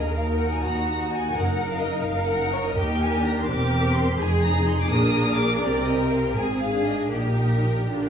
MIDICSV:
0, 0, Header, 1, 6, 480
1, 0, Start_track
1, 0, Key_signature, -3, "major"
1, 0, Tempo, 475813
1, 1373, Time_signature, 6, 3, 24, 8
1, 5686, Tempo, 489396
1, 6646, Tempo, 514580
1, 8022, End_track
2, 0, Start_track
2, 0, Title_t, "Violin section"
2, 0, Program_c, 0, 48
2, 0, Note_on_c, 0, 75, 64
2, 157, Note_off_c, 0, 75, 0
2, 162, Note_on_c, 0, 77, 53
2, 242, Note_off_c, 0, 77, 0
2, 392, Note_on_c, 0, 78, 54
2, 518, Note_off_c, 0, 78, 0
2, 521, Note_on_c, 0, 80, 59
2, 638, Note_on_c, 0, 82, 67
2, 646, Note_off_c, 0, 80, 0
2, 1125, Note_on_c, 0, 80, 65
2, 1127, Note_off_c, 0, 82, 0
2, 1364, Note_off_c, 0, 80, 0
2, 1371, Note_on_c, 0, 78, 73
2, 1726, Note_on_c, 0, 77, 61
2, 1732, Note_off_c, 0, 78, 0
2, 1840, Note_on_c, 0, 75, 61
2, 1847, Note_off_c, 0, 77, 0
2, 2067, Note_on_c, 0, 77, 68
2, 2087, Note_off_c, 0, 75, 0
2, 2298, Note_on_c, 0, 78, 72
2, 2316, Note_off_c, 0, 77, 0
2, 2555, Note_off_c, 0, 78, 0
2, 2558, Note_on_c, 0, 73, 65
2, 2685, Note_off_c, 0, 73, 0
2, 2701, Note_on_c, 0, 75, 53
2, 2811, Note_on_c, 0, 79, 73
2, 2815, Note_off_c, 0, 75, 0
2, 3042, Note_on_c, 0, 80, 67
2, 3046, Note_off_c, 0, 79, 0
2, 3280, Note_off_c, 0, 80, 0
2, 3284, Note_on_c, 0, 82, 64
2, 3331, Note_off_c, 0, 82, 0
2, 3418, Note_on_c, 0, 84, 63
2, 3521, Note_on_c, 0, 86, 74
2, 3526, Note_off_c, 0, 84, 0
2, 3988, Note_on_c, 0, 84, 73
2, 3989, Note_off_c, 0, 86, 0
2, 4235, Note_off_c, 0, 84, 0
2, 4240, Note_on_c, 0, 80, 78
2, 4473, Note_on_c, 0, 82, 67
2, 4481, Note_off_c, 0, 80, 0
2, 4711, Note_off_c, 0, 82, 0
2, 4722, Note_on_c, 0, 84, 62
2, 4769, Note_off_c, 0, 84, 0
2, 4848, Note_on_c, 0, 86, 68
2, 4951, Note_on_c, 0, 87, 80
2, 4960, Note_off_c, 0, 86, 0
2, 5409, Note_on_c, 0, 86, 74
2, 5428, Note_off_c, 0, 87, 0
2, 5664, Note_on_c, 0, 74, 76
2, 5665, Note_off_c, 0, 86, 0
2, 5904, Note_on_c, 0, 75, 60
2, 5908, Note_off_c, 0, 74, 0
2, 6131, Note_on_c, 0, 77, 60
2, 6153, Note_off_c, 0, 75, 0
2, 6266, Note_off_c, 0, 77, 0
2, 6284, Note_on_c, 0, 79, 55
2, 6331, Note_off_c, 0, 79, 0
2, 6384, Note_on_c, 0, 80, 62
2, 6632, Note_off_c, 0, 80, 0
2, 6652, Note_on_c, 0, 77, 58
2, 6882, Note_off_c, 0, 77, 0
2, 6887, Note_on_c, 0, 75, 49
2, 7112, Note_on_c, 0, 70, 62
2, 7127, Note_off_c, 0, 75, 0
2, 8022, Note_off_c, 0, 70, 0
2, 8022, End_track
3, 0, Start_track
3, 0, Title_t, "Violin section"
3, 0, Program_c, 1, 48
3, 0, Note_on_c, 1, 70, 52
3, 646, Note_on_c, 1, 66, 52
3, 648, Note_off_c, 1, 70, 0
3, 1356, Note_off_c, 1, 66, 0
3, 1373, Note_on_c, 1, 70, 55
3, 2093, Note_off_c, 1, 70, 0
3, 2108, Note_on_c, 1, 70, 60
3, 2803, Note_off_c, 1, 70, 0
3, 2812, Note_on_c, 1, 67, 59
3, 3506, Note_off_c, 1, 67, 0
3, 3521, Note_on_c, 1, 67, 63
3, 4227, Note_off_c, 1, 67, 0
3, 4232, Note_on_c, 1, 68, 60
3, 4940, Note_off_c, 1, 68, 0
3, 4954, Note_on_c, 1, 70, 65
3, 5682, Note_off_c, 1, 70, 0
3, 5694, Note_on_c, 1, 70, 61
3, 6392, Note_off_c, 1, 70, 0
3, 6399, Note_on_c, 1, 68, 49
3, 7120, Note_on_c, 1, 67, 43
3, 7124, Note_off_c, 1, 68, 0
3, 8022, Note_off_c, 1, 67, 0
3, 8022, End_track
4, 0, Start_track
4, 0, Title_t, "Viola section"
4, 0, Program_c, 2, 48
4, 173, Note_on_c, 2, 63, 35
4, 175, Note_on_c, 2, 66, 37
4, 881, Note_off_c, 2, 63, 0
4, 882, Note_off_c, 2, 66, 0
4, 894, Note_on_c, 2, 63, 38
4, 895, Note_on_c, 2, 66, 36
4, 1360, Note_off_c, 2, 63, 0
4, 1365, Note_off_c, 2, 66, 0
4, 1372, Note_on_c, 2, 63, 40
4, 1375, Note_on_c, 2, 70, 40
4, 1602, Note_off_c, 2, 63, 0
4, 1602, Note_off_c, 2, 70, 0
4, 1614, Note_on_c, 2, 63, 41
4, 1614, Note_on_c, 2, 70, 40
4, 2320, Note_off_c, 2, 63, 0
4, 2320, Note_off_c, 2, 70, 0
4, 2352, Note_on_c, 2, 63, 41
4, 2352, Note_on_c, 2, 70, 41
4, 2803, Note_off_c, 2, 70, 0
4, 2810, Note_off_c, 2, 63, 0
4, 2815, Note_on_c, 2, 70, 51
4, 2820, Note_on_c, 2, 63, 50
4, 3144, Note_off_c, 2, 63, 0
4, 3176, Note_on_c, 2, 62, 47
4, 3481, Note_off_c, 2, 70, 0
4, 3525, Note_off_c, 2, 62, 0
4, 3527, Note_on_c, 2, 70, 49
4, 3528, Note_on_c, 2, 60, 54
4, 4230, Note_off_c, 2, 70, 0
4, 4240, Note_on_c, 2, 68, 48
4, 4244, Note_off_c, 2, 60, 0
4, 4245, Note_on_c, 2, 63, 49
4, 4944, Note_off_c, 2, 68, 0
4, 4946, Note_off_c, 2, 63, 0
4, 4959, Note_on_c, 2, 62, 52
4, 4959, Note_on_c, 2, 68, 56
4, 5672, Note_off_c, 2, 68, 0
4, 5687, Note_off_c, 2, 62, 0
4, 5691, Note_on_c, 2, 60, 53
4, 5691, Note_on_c, 2, 67, 50
4, 6398, Note_off_c, 2, 60, 0
4, 6403, Note_on_c, 2, 68, 46
4, 6405, Note_off_c, 2, 67, 0
4, 6410, Note_on_c, 2, 60, 43
4, 6761, Note_off_c, 2, 60, 0
4, 6765, Note_on_c, 2, 62, 41
4, 7118, Note_off_c, 2, 62, 0
4, 7125, Note_on_c, 2, 67, 39
4, 7126, Note_off_c, 2, 68, 0
4, 7130, Note_on_c, 2, 63, 40
4, 7832, Note_off_c, 2, 67, 0
4, 7848, Note_on_c, 2, 62, 40
4, 7849, Note_off_c, 2, 63, 0
4, 7853, Note_on_c, 2, 65, 43
4, 8022, Note_off_c, 2, 62, 0
4, 8022, Note_off_c, 2, 65, 0
4, 8022, End_track
5, 0, Start_track
5, 0, Title_t, "Cello section"
5, 0, Program_c, 3, 48
5, 0, Note_on_c, 3, 39, 52
5, 567, Note_off_c, 3, 39, 0
5, 654, Note_on_c, 3, 39, 51
5, 1290, Note_off_c, 3, 39, 0
5, 1375, Note_on_c, 3, 42, 54
5, 2009, Note_off_c, 3, 42, 0
5, 2097, Note_on_c, 3, 42, 56
5, 2729, Note_off_c, 3, 42, 0
5, 2810, Note_on_c, 3, 39, 56
5, 3478, Note_off_c, 3, 39, 0
5, 3520, Note_on_c, 3, 40, 52
5, 4240, Note_off_c, 3, 40, 0
5, 4243, Note_on_c, 3, 41, 55
5, 4946, Note_off_c, 3, 41, 0
5, 4960, Note_on_c, 3, 46, 55
5, 5687, Note_off_c, 3, 46, 0
5, 5687, Note_on_c, 3, 48, 52
5, 6389, Note_off_c, 3, 48, 0
5, 6400, Note_on_c, 3, 44, 46
5, 7124, Note_off_c, 3, 44, 0
5, 7129, Note_on_c, 3, 46, 43
5, 7834, Note_off_c, 3, 46, 0
5, 7852, Note_on_c, 3, 50, 46
5, 8022, Note_off_c, 3, 50, 0
5, 8022, End_track
6, 0, Start_track
6, 0, Title_t, "Double bass section"
6, 0, Program_c, 4, 48
6, 0, Note_on_c, 4, 39, 48
6, 565, Note_off_c, 4, 39, 0
6, 654, Note_on_c, 4, 39, 52
6, 1290, Note_off_c, 4, 39, 0
6, 1373, Note_on_c, 4, 30, 54
6, 2008, Note_off_c, 4, 30, 0
6, 2086, Note_on_c, 4, 30, 57
6, 2723, Note_off_c, 4, 30, 0
6, 2810, Note_on_c, 4, 39, 52
6, 3479, Note_off_c, 4, 39, 0
6, 3509, Note_on_c, 4, 28, 55
6, 4235, Note_off_c, 4, 28, 0
6, 4242, Note_on_c, 4, 29, 52
6, 4945, Note_off_c, 4, 29, 0
6, 4955, Note_on_c, 4, 34, 53
6, 5685, Note_off_c, 4, 34, 0
6, 5685, Note_on_c, 4, 36, 48
6, 6388, Note_off_c, 4, 36, 0
6, 6405, Note_on_c, 4, 32, 53
6, 7125, Note_on_c, 4, 34, 43
6, 7126, Note_off_c, 4, 32, 0
6, 7832, Note_off_c, 4, 34, 0
6, 7848, Note_on_c, 4, 34, 41
6, 8022, Note_off_c, 4, 34, 0
6, 8022, End_track
0, 0, End_of_file